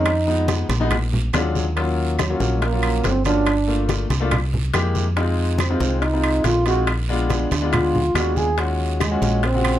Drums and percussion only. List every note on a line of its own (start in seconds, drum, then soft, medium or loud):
0.05 high bongo medium
0.05 high conga soft
0.05 high timbale medium
0.05 long guiro medium
0.05 claves medium
0.27 high bongo soft
0.27 high conga soft
0.48 high bongo medium
0.48 high conga loud
0.48 high timbale medium
0.48 short guiro medium
0.70 high conga medium
0.70 high timbale medium
0.70 short guiro medium
0.91 high bongo medium
0.91 high conga soft
0.91 low conga medium
0.91 high timbale medium
0.91 long guiro medium
0.91 claves medium
1.13 high bongo soft
1.13 high conga soft
1.13 low conga medium
1.33 high bongo medium
1.33 low bongo medium
1.33 high conga medium
1.33 high timbale medium
1.33 low timbale medium
1.33 short guiro medium
1.33 claves medium
1.55 high bongo soft
1.55 high conga medium
1.55 short guiro medium
1.77 high bongo medium
1.77 high conga soft
1.77 high timbale medium
1.77 long guiro medium
1.98 high conga soft
2.19 high bongo medium
2.19 high conga medium
2.19 high timbale medium
2.19 short guiro medium
2.19 claves medium
2.40 high conga medium
2.40 short guiro medium
2.62 high bongo medium
2.62 high conga soft
2.62 high timbale medium
2.62 long guiro medium
2.83 high conga soft
2.83 high timbale medium
2.83 claves medium
3.04 high bongo medium
3.04 low bongo medium
3.04 high conga medium
3.04 high timbale medium
3.04 low timbale medium
3.04 short guiro medium
3.25 high conga medium
3.25 high timbale medium
3.25 short guiro medium
3.46 high bongo medium
3.46 high conga soft
3.46 high timbale medium
3.46 long guiro medium
3.46 claves medium
3.68 high bongo soft
3.68 high conga soft
3.89 high bongo medium
3.89 high conga medium
3.89 high timbale medium
3.89 short guiro medium
4.10 high conga medium
4.10 high timbale medium
4.10 short guiro medium
4.31 high bongo medium
4.31 high conga soft
4.31 low conga medium
4.31 high timbale medium
4.31 long guiro medium
4.31 claves medium
4.53 high bongo soft
4.53 high conga soft
4.53 low conga medium
4.74 high bongo medium
4.74 low bongo medium
4.74 high conga medium
4.74 high timbale loud
4.74 short guiro medium
4.74 claves medium
4.95 high bongo soft
4.95 high conga medium
4.95 short guiro medium
5.17 high bongo medium
5.17 high conga soft
5.17 high timbale medium
5.17 long guiro medium
5.38 high conga soft
5.58 high bongo medium
5.58 high conga medium
5.58 high timbale medium
5.58 short guiro medium
5.58 claves medium
5.80 high conga medium
5.80 short guiro medium
6.02 high bongo medium
6.02 high conga soft
6.02 high timbale medium
6.02 long guiro medium
6.24 high conga soft
6.24 high timbale medium
6.24 claves medium
6.44 high bongo medium
6.44 low bongo medium
6.44 high conga medium
6.44 high timbale medium
6.44 low timbale medium
6.44 short guiro medium
6.66 high timbale medium
6.66 short guiro medium
6.87 high bongo medium
6.87 high conga soft
6.87 high timbale medium
6.87 long guiro medium
6.87 claves medium
7.09 high bongo soft
7.09 high conga soft
7.30 high bongo medium
7.30 high conga medium
7.30 high timbale medium
7.30 short guiro medium
7.51 high conga medium
7.51 high timbale medium
7.51 short guiro medium
7.72 high bongo medium
7.72 high conga soft
7.72 low conga medium
7.72 high timbale loud
7.72 long guiro medium
7.72 claves medium
7.94 high bongo soft
7.94 high conga soft
7.94 low conga medium
8.15 high bongo medium
8.15 low bongo medium
8.15 high conga medium
8.15 high timbale medium
8.15 short guiro medium
8.15 claves medium
8.36 high bongo soft
8.36 high conga medium
8.36 short guiro medium
8.57 high bongo medium
8.57 high conga soft
8.57 high timbale medium
8.57 long guiro medium
8.80 high conga soft
9.00 high bongo medium
9.00 high conga loud
9.00 high timbale medium
9.00 short guiro medium
9.00 claves medium
9.22 high conga medium
9.22 short guiro medium
9.43 high bongo medium
9.43 high conga soft
9.43 high timbale medium
9.43 long guiro medium
9.64 high conga soft
9.64 high timbale loud
9.64 claves medium